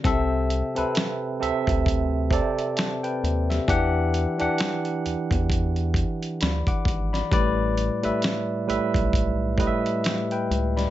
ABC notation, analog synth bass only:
X:1
M:4/4
L:1/16
Q:"Swing 16ths" 1/4=66
K:Em
V:1 name="Analog synth bass" clef=bass
C,,3 D,, z2 D,, D,,4 z3 ^D,,2 | E,,3 E,, z2 E,, E,,4 z D,, z ^G,,,2 | A,,,3 B,,, z2 B,,, B,,,4 z3 ^C,,2 |]